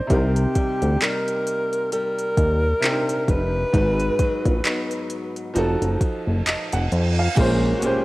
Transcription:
Already playing: F3 C4 D#4 G#4 C5 D5 D#5
0.07 C2 C3 C4 D#4, kick, closed hi-hat
0.12 G4 A#4
0.36 closed hi-hat
0.55 G3, kick, closed hi-hat
0.82 D2, closed hi-hat
1.01 G3 A#3 D#4 A#4, clap, closed hi-hat
1.28 closed hi-hat
1.47 closed hi-hat
1.73 closed hi-hat
1.92 G3 A#4, closed hi-hat
2.19 closed hi-hat
2.37 D#2, kick, closed hi-hat
2.80 C3 C4 D4, clap, closed hi-hat
2.85 G4
2.90 D#4
3.09 closed hi-hat
3.24 A#4
3.28 F1 B4, kick, closed hi-hat
3.72 G#1 G#2 G#3 D#4 F#4, kick, closed hi-hat
3.77 B4
4.00 closed hi-hat
4.19 F#3, kick, closed hi-hat
4.45 A#1, kick, closed hi-hat
4.64 F#3 B3 D#4, clap, closed hi-hat
4.91 closed hi-hat
5.10 closed hi-hat
5.36 closed hi-hat
5.54 F1 F3 D#4 F#4, closed hi-hat, reverse cymbal
5.58 A4
5.82 F#1, closed hi-hat
6.01 kick, closed hi-hat
6.27 F#1
6.46 F1 D#4 D#5, clap, closed hi-hat
6.72 F1 F#5, closed hi-hat
6.92 F2, closed hi-hat
7.19 F5
7.35 A#1 A#2 G#3 A#3 C#4, kick, closed hi-hat, crash, impact
7.40 C5
7.79 A#2 G#3 C#4 F#4, closed hi-hat
7.84 C#4 G4 C5

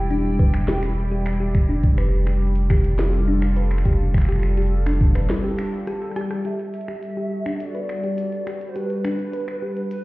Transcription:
Already playing: E1 G3 E4 G4 D5
0.10 D4 G5, closed hi-hat
0.39 B4, kick
0.54 finger snap, closed hi-hat
0.68 G4, snare
0.83 finger snap, closed hi-hat
1.11 G4
1.26 finger snap
1.40 G4
1.55 finger snap, kick, closed hi-hat
1.69 D4
1.83 F1 G3, kick, closed hi-hat
1.98 B4, finger snap
2.27 G4, finger snap
2.45 F4
2.56 closed hi-hat
2.70 G4, finger snap, kick
2.81 A4, closed hi-hat
2.99 G4, finger snap, snare
3.13 closed hi-hat
3.28 D4
3.42 finger snap
3.57 B4, closed hi-hat
3.71 finger snap
3.78 finger snap
3.85 G4, kick, closed hi-hat
3.93 finger snap
4.14 finger snap, kick, closed hi-hat
4.18 finger snap
4.22 finger snap
4.25 G4, finger snap
4.29 finger snap
4.32 finger snap
4.36 finger snap
4.39 finger snap
4.43 finger snap
4.57 G4, closed hi-hat
4.62 closed hi-hat
4.67 closed hi-hat
4.86 D4, finger snap, closed hi-hat
5.01 kick
5.15 B4, finger snap, closed hi-hat
5.30 snare
5.44 G4
5.59 finger snap, closed hi-hat
5.87 G4, cross-stick, closed hi-hat
6.02 cross-stick
6.11 cross-stick
6.16 G4, cross-stick, closed hi-hat
6.21 cross-stick
6.31 cross-stick
6.45 G4 E5, closed hi-hat
6.59 closed hi-hat
6.69 F#4
6.74 closed hi-hat, shaker
6.81 closed hi-hat
6.88 G4, finger snap
7.03 closed hi-hat
7.17 G4
7.46 D4, finger snap, closed hi-hat
7.60 D5, closed hi-hat
7.75 B4, closed hi-hat
7.89 finger snap, closed hi-hat
8.02 G4 B4, closed hi-hat
8.18 closed hi-hat
8.32 closed hi-hat
8.47 G4, finger snap, closed hi-hat
8.61 closed hi-hat
8.69 C5
8.76 G4 B4, closed hi-hat
8.90 closed hi-hat
9.05 D4, finger snap, closed hi-hat, shaker
9.19 closed hi-hat
9.33 B4, closed hi-hat
9.48 finger snap
9.62 G4
9.77 closed hi-hat
9.91 B4, closed hi-hat

